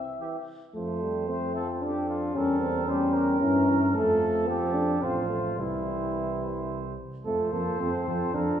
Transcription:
Already playing: C4 E5
0.20 E3 G4
0.75 F2 F3 A3 C5
1.02 G3
1.29 A3 C4 C5
1.55 F3 A4
1.82 D4 G4 A4
2.09 F4
2.34 E2 G3 C#4 A4 A#4
2.61 C4
2.87 G3 C#4 G4 C5
3.13 A#4
3.40 G2 E3 C#4
3.68 E3
3.94 F2 F3 A3 A4
4.48 C4 G4 A4
4.74 D4
5.02 A1 F3 C4 F4 C5
5.30 A3
5.58 C2 E3 G3 E4 C5
7.25 F2 F3 A3 A4 C5
7.52 F2 F3 A#3 A4
7.80 F2 F3 C4 A4
8.07 F2 F3 A4
8.33 F2 F3 D4 A4 A#4

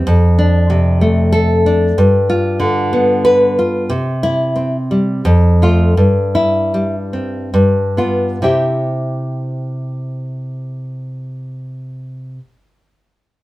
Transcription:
0.07 F2
0.39 D4
0.70 C3
1.01 A3
1.32 A4
1.66 D4
1.98 G2
2.30 F4
2.60 D3
2.93 B3
3.25 B4
3.59 F4
3.89 C3
4.23 E4
4.56 C4
4.91 G3
5.25 F2
5.62 A3 F4
5.97 G2
6.35 E4
6.74 G3
7.13 C4
7.54 G2
7.97 B3 F4
8.42 C3 E4 G4 C5 E5

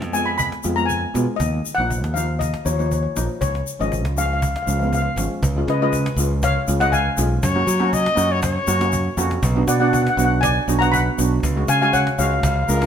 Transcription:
0.02 F2, cajon slap
0.13 G#3 B3 F4 G#5, shaker
0.26 B5, cajon slap
0.38 B5, cajon bass, shaker
0.52 cajon slap
0.63 F2 G#3 B3 F4, cajon slap, shaker
0.76 G#3 B3 F4 A#5, shaker
0.86 G#5, shaker
0.90 cajon bass
1.14 B2 G#3 B3 F4, cajon slap, shaker
1.28 cajon slap
1.36 D#2 D#5, cajon bass, shaker
1.65 cajon slap, shaker
1.75 A#1 F3 F#5, cajon slap
1.79 A#3 D#4
1.90 cajon bass, shaker
2.03 D#2, cajon slap
2.14 F3 A#3 D#4 F5, cajon slap, shaker
2.29 cajon slap
2.39 D#5, cajon bass, shaker
2.54 cajon slap
2.65 D#2 F3 A#3 D#4 C#5, shaker
2.73 C#5
2.78 F3 A#3 D#4 C#5, shaker
2.86 C#5
2.91 C#5, cajon bass, shaker
3.03 C#5
3.16 A#1 F3 A#3 D#4, cajon slap, shaker
3.30 cajon slap
3.41 C#2 C#5, cajon bass, shaker
3.55 cajon slap
3.67 cajon slap, shaker
3.79 G#1 F3 G#3 C#4 D#5, shaker
3.92 cajon bass, shaker
4.04 C#2, cajon slap
4.17 F3 G#3 C#4 F5, cajon slap, shaker
4.26 F5
4.30 F5, cajon slap
4.41 F5, cajon bass, shaker
4.48 F5
4.56 F5, cajon slap
4.63 F3 F5
4.67 C#2 G#3 C#4 F5, shaker
4.79 F3 G#3 B3 F5, shaker
4.87 F5
4.93 F5, cajon bass, shaker
5.02 F5
5.16 G#1 F3 G#3 C#4, cajon slap, shaker
5.31 cajon slap
5.42 C#2, cajon bass, shaker
5.56 G#3 C#4 F4
5.68 C#3 B4 D#5, cajon slap
5.81 G#3 C#4 F4 B4 D#5, cajon slap
5.93 cajon bass, shaker
6.06 cajon slap
6.16 C#2 G#3 C#4 F4, cajon slap, shaker
6.31 cajon slap
6.42 C#5 F5, cajon bass, cajon slap, shaker
6.68 C#2 G#3 C#4 F4, cajon slap, shaker
6.80 G#3 C#4 F4 D#5 F#5, cajon slap, shaker
6.92 F5 G#5, cajon bass, shaker
7.17 B1 G#3 C#4 F4, shaker
7.43 F#2 C#5, cajon bass, shaker
7.55 A#3 C#4 F#4
7.67 F#3, cajon slap, shaker
7.79 A#3 C#4 F#4, cajon slap
7.93 D#5, cajon bass, shaker
8.06 cajon slap
8.16 F#2 A#3 C#4 F#4, shaker
8.32 C#5
8.42 C#5, cajon bass, cajon slap, shaker
8.67 F#2 A#3 C#4 F#4, shaker
8.81 A#3 C#4 F#4, cajon slap, shaker
8.92 cajon bass, shaker
9.17 F2 A#3 C#4 F#4, shaker
9.31 cajon slap
9.43 B1, cajon bass, shaker
9.55 B3 D4 F#4
9.67 B2 D5 F#5, cajon slap, shaker
9.80 B3 D4 F#4 D5 F#5, cajon slap
9.88 F#5
9.93 F#5, cajon bass, shaker
10.02 F#5
10.07 F#5, cajon slap
10.17 B1 B3 D4 F#4 F#5, shaker
10.24 F#5
10.41 D5 G#5, cajon bass, cajon slap, shaker
10.68 B1 B3 D4 F#4, cajon slap, shaker
10.79 B3 D4 F#5 A#5, cajon slap, shaker
10.83 F#4
10.92 F#5 B5, cajon bass, shaker
11.18 B1 B3 D4 F#4, cajon slap, shaker
11.32 cajon slap
11.43 C#2, cajon bass, shaker
11.56 G#3 C#4 F#4
11.68 C#3 F5 G#5, cajon slap, shaker
11.81 G#3 C#4 F#4 F5 G#5, shaker
11.93 C#5 F#5, cajon bass, shaker
12.07 cajon slap
12.18 C#2 G#3 C#4 F#4 C#5 F5, cajon slap, shaker
12.26 F5
12.31 F5, cajon slap
12.40 C#2 F5, cajon bass, cajon slap, shaker
12.48 F5
12.56 F5
12.63 F5
12.68 C#2 G#3 C#4 F4 A#4 F5, cajon slap, shaker
12.77 F5
12.81 G#3 C#4 F4, cajon slap

